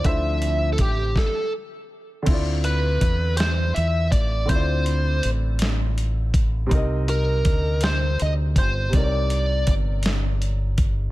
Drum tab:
CC |------|x-----|------|------|
HH |xxx---|xxxxxx|xxxxxx|xxxxxx|
SD |---o--|---o--|---o--|---o--|
BD |o-oo--|o-o--o|o----o|o-o--o|

CC |------|
HH |xxxxxx|
SD |---o--|
BD |o-o--o|